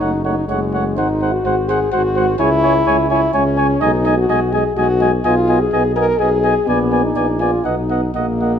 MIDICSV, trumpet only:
0, 0, Header, 1, 2, 480
1, 0, Start_track
1, 0, Tempo, 476569
1, 979, Time_signature, 3, 2, 24, 8
1, 6729, Tempo, 497100
1, 8573, End_track
2, 0, Start_track
2, 0, Title_t, "Trumpet"
2, 0, Program_c, 0, 56
2, 12, Note_on_c, 0, 78, 46
2, 121, Note_off_c, 0, 78, 0
2, 249, Note_on_c, 0, 78, 44
2, 360, Note_off_c, 0, 78, 0
2, 498, Note_on_c, 0, 78, 49
2, 607, Note_off_c, 0, 78, 0
2, 738, Note_on_c, 0, 78, 52
2, 846, Note_off_c, 0, 78, 0
2, 985, Note_on_c, 0, 78, 52
2, 1092, Note_off_c, 0, 78, 0
2, 1224, Note_on_c, 0, 78, 45
2, 1332, Note_off_c, 0, 78, 0
2, 1463, Note_on_c, 0, 78, 51
2, 1570, Note_off_c, 0, 78, 0
2, 1705, Note_on_c, 0, 78, 51
2, 1811, Note_off_c, 0, 78, 0
2, 1934, Note_on_c, 0, 78, 54
2, 2043, Note_off_c, 0, 78, 0
2, 2177, Note_on_c, 0, 78, 55
2, 2285, Note_off_c, 0, 78, 0
2, 2408, Note_on_c, 0, 80, 56
2, 2517, Note_off_c, 0, 80, 0
2, 2643, Note_on_c, 0, 80, 50
2, 2753, Note_off_c, 0, 80, 0
2, 2882, Note_on_c, 0, 80, 59
2, 2992, Note_off_c, 0, 80, 0
2, 3123, Note_on_c, 0, 80, 54
2, 3231, Note_off_c, 0, 80, 0
2, 3353, Note_on_c, 0, 80, 56
2, 3463, Note_off_c, 0, 80, 0
2, 3597, Note_on_c, 0, 80, 59
2, 3707, Note_off_c, 0, 80, 0
2, 3840, Note_on_c, 0, 80, 61
2, 3949, Note_off_c, 0, 80, 0
2, 4080, Note_on_c, 0, 80, 57
2, 4189, Note_off_c, 0, 80, 0
2, 4323, Note_on_c, 0, 80, 60
2, 4431, Note_off_c, 0, 80, 0
2, 4561, Note_on_c, 0, 80, 57
2, 4670, Note_off_c, 0, 80, 0
2, 4807, Note_on_c, 0, 80, 59
2, 4915, Note_off_c, 0, 80, 0
2, 5044, Note_on_c, 0, 80, 59
2, 5154, Note_off_c, 0, 80, 0
2, 5281, Note_on_c, 0, 80, 57
2, 5391, Note_off_c, 0, 80, 0
2, 5525, Note_on_c, 0, 80, 52
2, 5633, Note_off_c, 0, 80, 0
2, 5765, Note_on_c, 0, 80, 56
2, 5873, Note_off_c, 0, 80, 0
2, 6000, Note_on_c, 0, 80, 55
2, 6109, Note_off_c, 0, 80, 0
2, 6235, Note_on_c, 0, 80, 52
2, 6346, Note_off_c, 0, 80, 0
2, 6484, Note_on_c, 0, 80, 56
2, 6593, Note_off_c, 0, 80, 0
2, 6732, Note_on_c, 0, 80, 59
2, 6836, Note_off_c, 0, 80, 0
2, 6959, Note_on_c, 0, 80, 50
2, 7064, Note_off_c, 0, 80, 0
2, 7194, Note_on_c, 0, 80, 52
2, 7299, Note_off_c, 0, 80, 0
2, 7423, Note_on_c, 0, 80, 49
2, 7531, Note_off_c, 0, 80, 0
2, 7659, Note_on_c, 0, 78, 48
2, 7769, Note_off_c, 0, 78, 0
2, 7908, Note_on_c, 0, 78, 48
2, 8018, Note_off_c, 0, 78, 0
2, 8144, Note_on_c, 0, 78, 50
2, 8258, Note_off_c, 0, 78, 0
2, 8395, Note_on_c, 0, 78, 46
2, 8509, Note_off_c, 0, 78, 0
2, 8573, End_track
0, 0, End_of_file